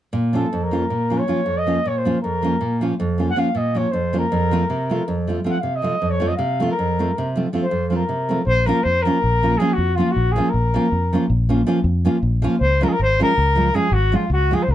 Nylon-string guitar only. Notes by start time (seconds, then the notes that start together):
0.13 A#2
0.33 F3 A#3 C#4 F4
0.53 F2
0.71 F3 A#3 C#4 F4
0.90 A#2
1.10 F3 A#3 C#4 F4
1.28 F3 A#3 C#4 F4
1.46 F2
1.66 F3 A#3 C#4 F4
1.85 A#2
2.05 F3 A#3 C#4 F4
2.24 F2
2.42 F3 A#3 C#4 F4
2.61 A#2
2.81 F3 A#3 C#4 F4
3.00 F2
3.18 F3 A#3 C#4 F4
3.36 F3 A#3 C#4 F4
3.55 A#2
3.75 F3 A#3 C#4 F4
3.93 F2
4.13 F3 A#3 C#4 F4
4.32 F2
4.51 F3 A3 C4 F4
4.70 C3
4.90 F3 A3 C4 F4
5.08 F2
5.27 F3 A3 C4 F4
5.44 F3 A3 C4 F4
5.63 C3
5.82 F3 A3 C4 F4
6.02 F2
6.20 F3 A3 C4 F4
6.38 C3
6.60 F3 A3 C4 F4
6.79 F2
6.99 F3 A3 C4 F4
7.18 C3
7.36 F3 A3 C4 F4
7.53 F3 A3 C4 F4
7.71 F2
7.90 F3 A3 C4 F4
8.09 C3
8.29 F3 A3 C4 F4
8.66 F3 A#3 C#4 F4
9.05 F3 A#3 C#4 F4
9.43 F3 A#3 C#4 F4
9.60 F3 A#3 C#4 F4
9.98 F3 A#3 C#4 F4
10.36 F3 A#3 C#4 F4
10.74 F3 A#3 C#4 F4
11.13 F3 A#3 C#4 F4
11.49 F3 A#3 C#4 F4
11.67 F3 A#3 C#4 F4
12.05 F3 A#3 C#4 F4
12.42 F3 A#3 C#4 F4
12.81 F3 G#3 C#4 F4
13.19 F3 G#3 C#4 F4
13.55 F3 G#3 C#4 F4
13.74 F3 G#3 C#4 F4
14.12 F3 G#3 C#4 F4
14.51 F3 G#3 C#4 F4